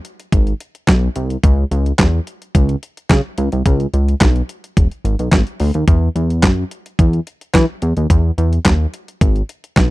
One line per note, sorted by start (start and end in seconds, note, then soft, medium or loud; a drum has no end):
0.05 closed hi-hat medium
0.20 closed hi-hat medium
0.32 0.53 G#1 medium
0.32 kick loud
0.32 closed hi-hat loud
0.47 closed hi-hat soft
0.60 closed hi-hat medium
0.75 closed hi-hat soft
0.88 1.09 B1 loud
0.88 kick loud
0.88 snare loud
0.88 clap medium
0.88 closed hi-hat medium
1.16 1.37 C2 loud
1.16 closed hi-hat medium
1.30 closed hi-hat soft
1.43 1.65 C#2 loud
1.43 kick loud
1.43 closed hi-hat loud
1.71 1.92 C#2 loud
1.71 closed hi-hat medium
1.86 closed hi-hat soft
1.99 2.20 E2 loud
1.99 kick loud
1.99 snare loud
1.99 clap loud
1.99 closed hi-hat medium
2.27 closed hi-hat medium
2.42 closed hi-hat soft
2.55 2.76 C#2 loud
2.55 kick loud
2.55 closed hi-hat loud
2.69 closed hi-hat soft
2.83 closed hi-hat medium
2.97 closed hi-hat medium
3.10 3.21 C#3 loud
3.10 kick loud
3.10 snare loud
3.10 clap medium
3.10 closed hi-hat medium
3.38 3.49 C#2 loud
3.38 closed hi-hat loud
3.52 3.63 C2 medium
3.52 closed hi-hat medium
3.66 3.87 C#2 loud
3.66 kick loud
3.66 closed hi-hat loud
3.80 closed hi-hat soft
3.94 4.15 C#2 medium
3.94 closed hi-hat medium
4.08 closed hi-hat soft
4.21 4.42 B1 loud
4.21 kick loud
4.21 snare loud
4.21 clap medium
4.21 closed hi-hat medium
4.36 closed hi-hat soft
4.49 closed hi-hat medium
4.64 closed hi-hat medium
4.77 4.88 E1 medium
4.77 kick loud
4.77 closed hi-hat loud
4.91 closed hi-hat soft
5.05 5.16 G#1 loud
5.05 closed hi-hat medium
5.19 5.29 B1 loud
5.19 closed hi-hat medium
5.32 5.43 G#1 loud
5.32 kick loud
5.32 snare loud
5.32 clap medium
5.32 closed hi-hat medium
5.47 closed hi-hat soft
5.60 5.71 D2 loud
5.60 open hi-hat medium
5.74 5.85 D#2 medium
5.74 closed hi-hat soft
5.88 6.09 E2 loud
5.88 kick loud
5.88 closed hi-hat loud
6.16 6.45 E2 loud
6.16 closed hi-hat medium
6.30 closed hi-hat soft
6.43 6.64 F#2 medium
6.43 kick loud
6.43 snare loud
6.43 clap loud
6.43 closed hi-hat medium
6.71 closed hi-hat medium
6.86 closed hi-hat medium
6.99 7.20 E2 loud
6.99 kick loud
6.99 closed hi-hat loud
7.13 closed hi-hat soft
7.27 closed hi-hat medium
7.41 closed hi-hat soft
7.54 7.65 E3 loud
7.54 kick loud
7.54 snare loud
7.54 clap medium
7.54 closed hi-hat medium
7.82 7.93 E2 loud
7.82 closed hi-hat medium
7.97 8.07 D#2 medium
7.97 closed hi-hat medium
8.10 8.31 E2 loud
8.10 kick loud
8.10 closed hi-hat loud
8.38 8.59 E2 loud
8.38 closed hi-hat medium
8.53 closed hi-hat soft
8.65 8.87 D#2 loud
8.65 kick loud
8.65 snare loud
8.65 clap loud
8.65 closed hi-hat loud
8.94 closed hi-hat medium
9.08 closed hi-hat medium
9.21 9.42 G#1 loud
9.21 kick loud
9.21 closed hi-hat medium
9.36 closed hi-hat soft
9.49 closed hi-hat medium
9.64 closed hi-hat soft
9.76 9.90 B1 loud
9.76 kick loud
9.76 snare loud
9.76 clap medium
9.76 closed hi-hat medium